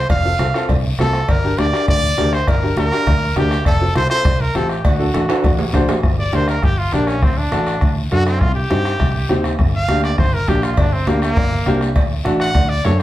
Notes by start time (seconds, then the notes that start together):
0.10 F1 F5, bombo low, bombo rim, cowbell, high conga, low conga, long guiro
0.24 C4 F4 A4
0.39 C2 C4 F4 A4, bombo rim, high conga, short guiro
0.54 C4 F4 A4, bombo rim, short guiro
0.69 C2, bombo low, bombo rim, cowbell, high conga, low conga, long guiro
0.84 high conga
0.98 C2 C4 F4 A4, bombo rim, high conga, low timbale, short guiro
1.13 bombo rim, short guiro
1.28 G1 A#4, bombo low, bombo rim, cowbell, high conga, long guiro
1.44 D4 G4 A#4
1.58 D2 D4 G4 A#4 D5, bombo rim, high conga, short guiro
1.72 D4 G4 A#4, bombo rim, short guiro
1.88 D2 D5, bombo low, bombo rim, cowbell, high conga, low conga, long guiro
2.03 high conga
2.17 D2 D4 G4 A#4, bombo rim, high conga, low timbale, short guiro
2.33 C5, bombo rim, short guiro
2.48 G1 A#4, bombo low, bombo rim, cowbell, high conga, long guiro
2.62 D4 G4 A#4
2.77 D2 D4 G4 A#4, bombo rim, high conga, short guiro
2.92 D4 G4 A#4, bombo rim, short guiro
3.07 D2, bombo low, bombo rim, cowbell, high conga, low conga, long guiro
3.36 D2 D4 G4 A#4, bombo rim, high conga, low conga, low timbale, short guiro
3.51 bombo rim, short guiro
3.65 F1 A4, bombo low, bombo rim, cowbell, high conga, long guiro
3.81 C4 F4 A4
3.95 C2 C4 F4 A4 C5, bombo rim, high conga, short guiro
4.10 C4 F4 A4 C5, bombo rim, short guiro
4.25 C2, bombo low, bombo rim, cowbell, high conga, low conga, long guiro
4.40 A#4, high conga
4.55 A1 C4 F4 G4 A4, bombo rim, high conga, short guiro
4.69 G4, bombo rim, short guiro
4.84 D2 F#4, bombo low, bombo rim, cowbell, high conga, long guiro
4.99 D4 F#4 A4
5.13 A1 D4 F#4 A4, bombo rim, high conga, short guiro
5.28 D4 F#4 A4, bombo rim, high timbale, short guiro
5.44 A1, bombo low, bombo rim, cowbell, high conga, low conga, long guiro
5.59 high conga, low timbale
5.73 A1 D4 F#4 C5, bombo low, bombo rim, high conga, low timbale, short guiro
5.89 bombo rim, low timbale, short guiro
6.03 G1, bombo low, bombo rim, high conga, long guiro
6.19 D5
6.33 D2 D4 G4 A#4 C5, bombo rim, high conga, short guiro
6.48 A#4, bombo rim, short guiro
6.62 G1 G4, bombo low, bombo rim, high conga, low conga, long guiro
6.78 F4
6.92 A#1 D4 G4 A#4, bombo rim, high conga, short guiro
7.07 C#4, bombo rim, short guiro
7.22 D2 C4, bombo low, bombo rim, high conga, long guiro
7.37 D4
7.51 A1 D4 F#4 A4, bombo rim, high conga, short guiro
7.66 bombo rim, short guiro
7.81 D2, bombo low, bombo rim, high conga, low conga, long guiro
7.97 high conga
8.11 F#2 D4 F#4 A4, bombo rim, high conga, short guiro
8.26 C4, bombo rim, short guiro
8.40 C2 F4, bombo low, bombo rim, high conga, long guiro
8.55 G4
8.70 G2 C4 D#4 G4, bombo rim, high conga, short guiro
8.85 bombo rim, short guiro
9.00 C2, bombo low, bombo rim, high conga, low conga, long guiro
9.15 high conga
9.29 D#2 C4 D#4 G4, bombo rim, high conga, short guiro
9.44 bombo rim, high conga, short guiro
9.59 G1, bombo low, bombo rim, high conga, low conga, long guiro
9.75 F5
9.88 D2 A#3 D4 G4, bombo rim, high conga, short guiro
10.03 D5, bombo rim, short guiro
10.18 G1 C5, bombo low, bombo rim, high conga, low conga, long guiro
10.33 A#4, high conga
10.47 A#1 A#3 D4 G4, bombo low, bombo rim, high conga, low conga, short guiro
10.62 F4, bombo rim, short guiro
10.77 G1 D4, bombo low, bombo rim, cowbell, high conga, long guiro
10.92 C4
11.06 D2 A#3 D4 G4, bombo rim, high conga, short guiro
11.22 A#3, bombo rim, short guiro
11.37 G1, bombo low, bombo rim, cowbell, high conga, low conga, long guiro
11.52 high conga
11.66 C2 A#3 D4 G4, bombo rim, high conga, low timbale, short guiro
11.81 bombo rim, short guiro
11.96 D2, bombo low, bombo rim, cowbell, long guiro
12.24 A1 A3 D4 F#4, bombo rim, high conga, short guiro
12.40 F#5, bombo rim, short guiro
12.55 D2, bombo low, bombo rim, cowbell, high conga, low conga, long guiro
12.69 D5
12.84 F#2 A3 D4 A4 C#5, bombo rim, high conga, low timbale, short guiro
12.99 C5